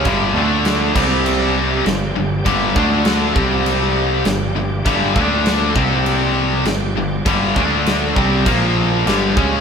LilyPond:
<<
  \new Staff \with { instrumentName = "Tonewheel organ" } { \time 4/4 \key g \minor \tempo 4 = 100 << { <g g'>8 d''4 <c' d''>4. <g' g''>4~ | <g' g''>8 d'4 c'4. g''4~ | g''8 d'4 c'4. g''4~ | g''8 d'4 <g g'>8 <bes c''>4 <g g'>4 | } \\ { d'8 a'4 g'4. r4 | r8 a'4 g'2~ g'8~ | g'8 a'4 g'2~ g'8~ | g'8 a'4 r8 f'4 d'4 | } >> }
  \new Staff \with { instrumentName = "Distorted electric guitar" } { \clef bass \time 4/4 \key g \minor <g, d g>8 <d a d'>4 <c g c'>4. <g, d>8 <g, d>8 | <g, d g>8 <d a d'>4 <c g c'>4. <g, d>8 <g, d>8 | <g, d g>8 <d a d'>4 <c g c'>4. <g, d>8 <g, d>8 | <g, d g>8 <d a d'>4 <c g c'>8 <bes, f bes>4 <g, d g>8 <cis aes cis'>8 | }
  \new Staff \with { instrumentName = "Overdriven electric guitar" } { \clef bass \time 4/4 \key g \minor <g, d g>8 <d a d'>4 <c g c'>4. <g, d>8 <g, d>8 | <g, d g>8 <d a d'>4 <c g c'>4. <g, d>8 <g, d>8 | <g, d g>8 <d a d'>4 <c g c'>4. <g, d>8 <g, d>8 | <g, d g>8 <d a d'>4 <c g c'>8 <bes, f bes>4 <g, d g>8 <cis aes cis'>8 | }
  \new Staff \with { instrumentName = "Overdriven electric guitar" } { \clef bass \time 4/4 \key g \minor <g, d g>8 <d a d'>4 <c g c'>4. <g, d>8 <g, d>8 | <g, d g>8 <d a d'>4 <c g c'>4. <g, d>8 <g, d>8 | <g, d g>8 <d a d'>4 <c g c'>4. <g, d>8 <g, d>8 | <g, d g>8 <d a d'>4 <c g c'>8 <bes, f bes>4 <g, d g>8 <cis aes cis'>8 | }
  \new Staff \with { instrumentName = "Picked electric bass" } { \clef bass \time 4/4 \key g \minor g,,8 d,4 c,4. g,,8 g,,8 | g,,8 d,4 c,4. g,,8 g,,8 | g,,8 d,4 c,4. g,,8 g,,8 | g,,8 d,4 c,8 bes,,4 g,,8 cis,8 | }
  \new DrumStaff \with { instrumentName = "Drums" } \drummode { \time 4/4 <cymc bd>4 <cymc sn>8 <cymc bd>8 cymc4 <cymc sn>4 | <cymc bd>8 bd8 <cymc sn>8 bd8 cymc4 <cymc sn>4 | <cymc bd>8 bd8 <cymc sn>8 bd8 cymc4 <cymc sn>4 | <cymc bd>8 bd8 <cymc sn>8 bd8 <cymc bd>4 <cymc sn>8 bd8 | }
>>